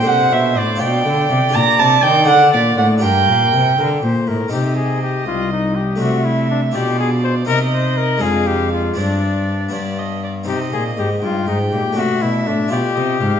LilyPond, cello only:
\new Staff \with { instrumentName = "Cello" } { \clef bass \time 6/8 \key g \phrygian \tempo 4. = 81 c8 b,8 a,8 b,8 d8 c8 | \key g \minor bes,8 c8 ees8 d8 bes,8 a,8 | g,8 bes,8 c8 d8 bes,8 a,8 | \key c \minor c4. c,4. |
c4. b,4. | c4. f,4. | g,4. g,4. | c8 bes,8 aes,8 g,8 aes,8 bes,8 |
c8 b,8 a,8 b,8 c8 aes,8 | }